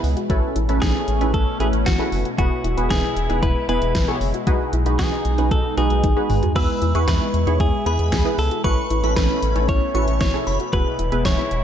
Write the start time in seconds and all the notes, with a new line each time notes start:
Already playing: B2 G#3 B3 E4 G#4 B4
0.03 C#2, open hi-hat
0.17 F#4, closed hi-hat
0.30 A1 A3 C#4 E4 F#4 A4 B4, kick, closed hi-hat
0.56 A1 E4, closed hi-hat
0.69 A1 C#4 E4 A4 B4, closed hi-hat
0.82 A1 D#4 G#4, kick, snare, closed hi-hat
0.95 E4
1.08 A1, closed hi-hat
1.21 A1 C#4 D#4 E4 A4 B4, closed hi-hat
1.34 A1 E4 A4, kick, closed hi-hat
1.60 A1 C#4 E4 F#4 G#4 A4 B4, closed hi-hat
1.73 A1, closed hi-hat
1.86 G#1 E4 F#4, kick, snare, closed hi-hat
1.99 C#4 E4 G#4 A4 B4
2.12 F#1, open hi-hat
2.25 F#4, closed hi-hat
2.38 E1 G#3 B3 E4 F#4 G#4 B4, kick, closed hi-hat
2.64 E1 E4, closed hi-hat
2.77 E1 B3 E4 G#4 B4, closed hi-hat
2.90 E1 D#4 G#4, kick, snare, closed hi-hat
3.03 E4
3.16 E1, closed hi-hat
3.29 E1 B3 D#4 E4 G#4 B4, closed hi-hat
3.43 E1 E4 B4, kick, closed hi-hat
3.68 E1 B3 E4 G#4 B4, closed hi-hat
3.82 E1, closed hi-hat
3.95 G#1 E4, kick, snare, closed hi-hat
4.08 B3 E4 G#4 C#5
4.21 F#1, open hi-hat
4.34 F#4, closed hi-hat
4.47 B1 D#4 F#4 G#4 B4, kick, closed hi-hat
4.73 B1 E4, closed hi-hat
4.86 B1 D#4 F#4 G#4 B4, closed hi-hat
4.99 B1 D#4 G#4, kick, snare, closed hi-hat
5.12 D#4
5.25 B1, closed hi-hat
5.38 B1 C#4 D#4 F#4 G#4 B4, closed hi-hat
5.51 B1 D#4 A4, kick, closed hi-hat
5.77 B1 D#4 F#4 G#4 B4, closed hi-hat
5.90 B1, closed hi-hat
6.03 A1 D#4, kick, closed hi-hat, high tom
6.16 D#4 F#4 G#4 B4
6.30 G#1, mid tom, open hi-hat
6.43 F#4, closed hi-hat, floor tom
6.55 E2 B3 E4 F#4 G#4 B4 E6, kick, crash
6.82 E2 E4, closed hi-hat
6.95 E2 B3 E4 G#4 B4 C#6, closed hi-hat
7.08 E2 D#4 B4, kick, snare, closed hi-hat
7.21 E4
7.34 E2, closed hi-hat
7.47 E2 B3 D#4 E4 G#4 C#5, closed hi-hat
7.60 E2 E4 G#4, kick, closed hi-hat
7.86 E2 B3 E4 G#4 B4 B5, closed hi-hat
7.99 E2, closed hi-hat
8.12 D#2 E4, kick, snare, closed hi-hat
8.25 B3 E4 G#4 B4
8.38 C#2 A4, open hi-hat
8.51 F#4, closed hi-hat
8.64 A1 B2 A3 C#4 E4 F#4 A4 B4 C#6, kick, closed hi-hat
8.90 A1 E4, closed hi-hat
9.04 A1 C#4 E4 A4 B4 B5, closed hi-hat
9.16 A1 D#4 B4, kick, snare, closed hi-hat
9.30 E4
9.42 A1, closed hi-hat
9.55 A1 C#4 D#4 E4 A4 C#5, closed hi-hat
9.69 A1 E4 C#5, kick, closed hi-hat
9.95 A1 C#4 E4 F#4 A4 B4 C#6, closed hi-hat
10.08 A1, closed hi-hat
10.21 G#1 E4 C#5, kick, snare, closed hi-hat
10.34 C#4 E4 G#4 A4 C#5
10.47 F#1 B5, open hi-hat
10.60 F#4, closed hi-hat
10.73 E1 G#3 B3 E4 F#4 G#4 B4, kick, closed hi-hat
10.99 E1 E4, closed hi-hat
11.12 E1 B3 E4 G#4 B4, closed hi-hat
11.25 E1 D#4 C#5, kick, snare, closed hi-hat
11.38 E4
11.51 E1, closed hi-hat